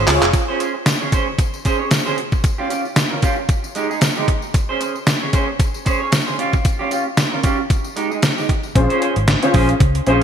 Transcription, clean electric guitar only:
0.07 muted clean electric guitar stroke
0.22 muted clean electric guitar stroke
0.34 muted clean electric guitar stroke
0.48 C#4 G#4 C5
0.60 C#4 G#4 C5
0.75 muted clean electric guitar stroke
0.86 muted clean electric guitar stroke
1.01 C#4 G#4 C#5
1.13 C#4 G#4 C5
1.28 muted clean electric guitar stroke
1.39 muted clean electric guitar stroke
1.54 muted clean electric guitar stroke
1.65 C#4 G#4 C5
1.79 C#4 G#4 C#5
2.06 C#4 G#4 C5
2.18 muted clean electric guitar stroke
2.32 muted clean electric guitar stroke
2.44 muted clean electric guitar stroke
2.58 C#4 F4 G4
2.70 C#4 F4 G4
2.85 muted clean electric guitar stroke
2.96 muted clean electric guitar stroke
3.11 C#4 F4 A#4
3.22 C#4 F4 G4
3.37 muted clean electric guitar stroke
3.49 muted clean electric guitar stroke
3.64 muted clean electric guitar stroke
3.75 G#3 D#4 G4
3.90 G#3 D#4 G#4
4.02 muted clean electric guitar stroke
4.17 G#3 D#4 G4
4.29 muted clean electric guitar stroke
4.43 muted clean electric guitar stroke
4.55 muted clean electric guitar stroke
4.69 C#4 G#4 C5
4.81 C#4 G#4 C5
4.96 muted clean electric guitar stroke
5.22 C#4 G#4 C#5
5.33 C#4 G#4 C5
5.48 muted clean electric guitar stroke
5.59 muted clean electric guitar stroke
5.75 muted clean electric guitar stroke
5.85 C#4 G#4 C5
6.00 C#4 G#4 C#5
6.12 muted clean electric guitar stroke
6.27 C#4 G#4 C5
6.38 C#4 F4 G4
6.53 muted clean electric guitar stroke
6.65 muted clean electric guitar stroke
6.79 C#4 F4 G4
6.91 C#4 F4 G4
7.05 muted clean electric guitar stroke
7.17 muted clean electric guitar stroke
7.32 C#4 F4 A#4
7.43 C#4 F4 G4
7.59 muted clean electric guitar stroke
7.70 muted clean electric guitar stroke
7.85 muted clean electric guitar stroke
7.96 G#3 D#4 G4
8.11 G#3 D#4 G#4
8.23 muted clean electric guitar stroke
8.37 G#3 D#4 G4
8.49 muted clean electric guitar stroke
8.64 muted clean electric guitar stroke
8.75 muted clean electric guitar stroke
8.90 C#4 G#4 C5
9.01 C#4 G#4 C5
9.16 muted clean electric guitar stroke
9.28 muted clean electric guitar stroke
9.43 C#4 G#4 C#5
9.54 C#4 G#4 C5
9.69 muted clean electric guitar stroke
9.80 muted clean electric guitar stroke
9.95 muted clean electric guitar stroke
10.07 C#4 G#4 C5

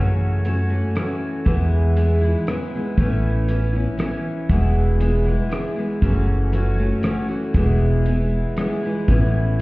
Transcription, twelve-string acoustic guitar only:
Already playing: F#2 C#3 E3 A3 C#4 F#4
0.45 E3 A3 C#4 F#4
0.69 E3 A3 C#4 F#4
0.95 E3 A3 C#4
0.99 F#4
1.45 E2 B2 E3 G#3 B3 E4
1.96 E3 G#3 B3 E4
2.21 E3 G#3 B3 E4
2.48 E3 G#3 B3 E4
2.74 E3 G#3 B3 E4
2.98 A2 E3 B3 C#4 E4
3.48 E3 B3 C#4 E4
3.73 B3 C#4 E4
3.97 E3 B3 C#4 E4
4.49 E2 B2 E3 G#3 B3 E4
4.99 E3 G#3 B3 E4
5.24 E3 G#3 B3 E4
5.49 E3 G#3 B3 E4
5.76 E3 G#3 B3 E4
6.01 F#2 C#3 E3 A3 C#4 F#4
6.52 E3 A3 C#4 F#4
6.78 E3 A3 C#4 F#4
7.04 E3 A3 C#4 F#4
7.28 E3 A3 C#4 F#4
7.54 E2 B2 E3 G#3 B3 E4
8.06 E3 G#3 B3 E4
8.57 E3 G#3 B3 E4
8.83 E3 G#3 B3 E4
9.09 A2 E3 B3 C#4 E4

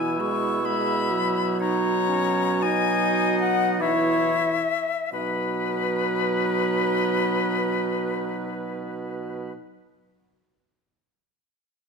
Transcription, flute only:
Already playing: G#5
0.20 C#6
0.65 B5
1.60 A#5
2.62 G#5
3.40 F#5
3.80 E5
5.13 B4

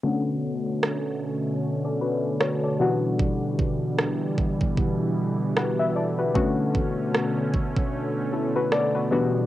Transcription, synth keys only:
0.03 D3 A3 B3 C#4 F#4
1.85 A4 D5
2.01 F#4 B4
2.40 F#4 C#5
2.63 A4 D5
2.79 B2 E3 G3 B3 D4 F#4
5.56 F#4 B4
5.79 B4 E5
5.96 A4 D5
6.19 F#4 B4
6.34 D3 A3 B3 C#4 F#4
8.33 E4 A4
8.56 F#4 B4
8.72 A4 D5
8.95 F#4 B4
9.11 B2 E3 G3 B3 D4 F#4

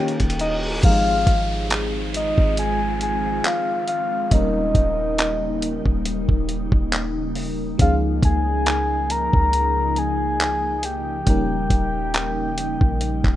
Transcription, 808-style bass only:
0.20 D#1
0.84 G#1
1.27 G#1
2.38 G#1
4.31 D#1
4.75 D#1
5.86 D#1
6.29 D#1
6.72 D#1
7.79 C#2
8.23 C#2
9.33 C#2
11.27 D#1
11.70 D#1
12.81 A#1
13.24 D#1

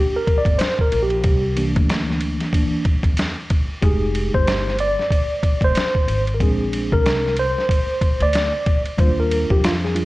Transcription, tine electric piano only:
Already playing: G4
0.16 A#4
0.38 D5
0.58 C5
0.81 A#4
1.02 G4
1.56 E3 A#3 D4
2.55 E3 A#3 D4
3.82 G#3 D#4 G4 G#4
4.34 C5
4.81 D5
5.64 C5
6.34 A#4
6.40 G#3 C4 D4 G#4
6.93 A#4
7.39 C5
8.22 D5
8.98 G3 D4 F4 C5
9.20 A#4
9.51 G4
9.65 F4
9.84 G#4
9.95 G3 D4 F4

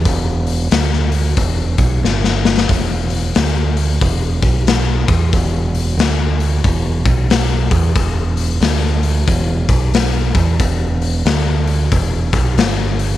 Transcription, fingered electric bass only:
0.05 E1
0.72 D2
1.37 E1
1.78 B1
2.03 G1
2.70 E1
3.36 D2
4.02 E1
4.43 B1
5.09 E2
5.33 E1
5.97 D2
6.65 E1
7.06 B1
7.71 E2
7.95 E1
8.61 D2
9.28 E1
9.69 B1
10.35 E2
10.60 E1
11.25 D2
11.92 E1
12.33 B1
12.57 G1

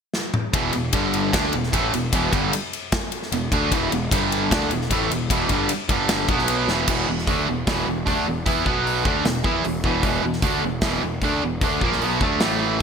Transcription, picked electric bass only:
0.53 E1
0.74 E1
0.93 G1
1.34 D2
1.53 E1
1.73 A1
1.93 E1
2.13 E1
2.32 G1
3.32 E1
3.52 D2
3.72 E1
3.91 E1
4.11 G1
4.51 D2
4.70 E1
4.91 A1
5.10 E1
5.30 E1
5.50 G1
5.89 G1
6.28 B1
6.68 E1
6.88 E1
7.07 E1
7.27 D2
7.47 E1
7.67 E1
7.87 E1
8.07 D2
8.27 E1
8.46 E2
8.66 B1
9.05 D2
9.25 E1
9.44 E2
9.65 E1
9.83 E1
10.03 E1
10.24 E1
10.42 D2
10.63 E1
10.82 E1
11.02 E1
11.21 D2
11.42 E1
11.62 D2
11.81 A#1
12.02 B1
12.21 D2
12.41 A1

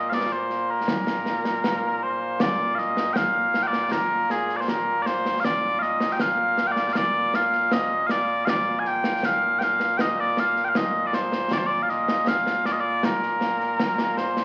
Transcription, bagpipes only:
Already playing: A#2 A#3 F4
0.10 D5 F5
0.33 C5
0.70 A#4
2.03 C5
2.41 D5
2.75 D#5 F5
3.13 F5 G5
3.63 G5
3.67 D5
3.92 A#4
4.31 G#4
4.57 D5
4.61 C5
4.69 A#4
5.02 D5
5.07 C5
5.40 F5
5.44 D5
5.79 D#5 F5
6.12 G5
6.21 F5
6.67 G5
6.72 D5
6.93 F5
6.97 D5
7.35 F5
7.73 D#5
8.07 D5 F5
8.45 F5
8.49 D5
8.79 G#5
8.87 G5
9.25 F5
9.59 G5
9.63 F5
9.98 D#5 G5
10.20 D5
10.40 F5
10.65 G5
10.69 F5
10.77 D#5
11.07 D5
11.15 C5
11.53 D5
11.58 C5
11.67 D5
11.82 F5
11.90 D#5
12.28 F5
12.66 D5
12.72 D#5
12.80 D5
13.05 A#4
14.17 C5

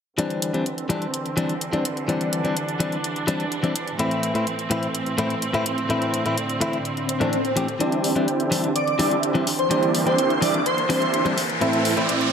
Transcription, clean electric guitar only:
0.18 E3 G3 C4 D4
0.54 E3 G3 C4 D4
0.89 E3 G3 C4 D4
1.37 E3 G3 C4 D4
1.73 E3 G3 C4 D4
2.08 E3 G3 C4 D4
2.44 E3 G3 C4 D4
2.80 E3 G3 C4 D4
3.27 E3 G3 C4 D4
3.63 E3 G3 C4 D4
3.99 A2 E3 A3 C4 E4
4.34 A2 E3 A3 C4 E4
4.70 A2 E3 A3 C4 E4
5.18 A2 E3 A3 C4 E4
5.53 A2 E3 A3 C4 E4
5.89 A2 E3 A3 C4 E4
6.25 A2 E3 A3 C4 E4
6.61 A2 E3 A3 C4 E4
7.20 A2 E3 A3 C4 D4
7.56 E3 A3 C4 G4
7.79 E3 G3 C4 D4
8.15 E3 G3 C4 D4
8.51 E3 G3 C4 D4
8.99 E3 G3 C4 D4
9.34 E3 G3 C4 D4
9.70 E3 G3 C4 D4
10.06 E3 G3 C4 D4
10.41 E3 G3 C4 D4
10.89 E3 G3 C4 D4
11.25 E3 G3 C4 D4
11.61 A2 E3 A3 C4 E4
11.96 A2 E3 A3 C4 E4

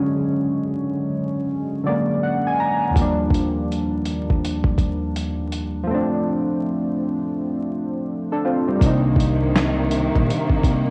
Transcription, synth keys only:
Already playing: D3 F#3 G#3 C#4
1.84 D3 F#3 G#3 D5
1.89 A#3
2.23 F#5
2.47 G#5
2.60 A#5
2.91 D#2 F3
2.96 G3 A#3
3.01 D4
5.83 F3 A3
5.91 C4 D4
8.32 D4 A4
8.45 C4 F4
8.68 G3 C4
8.76 G3 A#3
8.83 D4 D#4

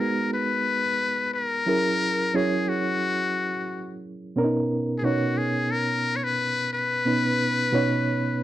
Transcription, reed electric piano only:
Already playing: G#3 B3 D#4 F#4 G#4 A#4 B4
1.66 F#3 C#4 E4 G#4 A#4
2.34 F#3 C#4 E4 G#4 C#5
4.36 B2 B3 C#4 D4 A#4
4.44 D#4
5.03 B2 B3 C#4 D#4 C#5
7.05 B2 B3 C#4 D#4 B4
7.72 B2 B3 C#4 D#4 C#5

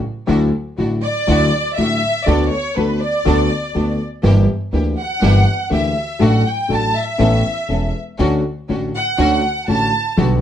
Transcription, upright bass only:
0.29 D2
0.79 A1
1.28 D2
1.78 A1
2.28 D2
2.77 D2
3.26 D2
3.75 D2
4.24 G1
4.73 D2
5.22 G1
5.71 D2
6.20 A1
6.70 A1
7.19 A1
7.69 E1
8.19 D2
8.69 A1
9.18 D2
9.68 A1
10.18 B1

